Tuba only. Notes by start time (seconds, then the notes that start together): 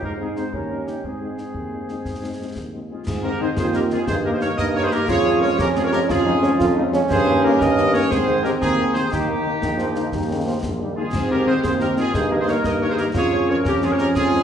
0.03 G#2
0.53 D#2
1.04 G#2
1.54 D#2
2.05 G#2
2.56 D#2
3.06 G#2
3.57 D#2
4.07 G2
4.58 G2
5.08 F2
5.60 F2
6.10 F2
6.60 F2
7.10 G2
7.60 G2
8.10 G#2
8.61 D#2
9.12 D#2
9.62 A#1
10.13 D#2
10.62 A#1
11.13 G#2
11.63 D#2
12.13 G2
12.65 G2
13.15 F2
13.65 F2
14.15 F2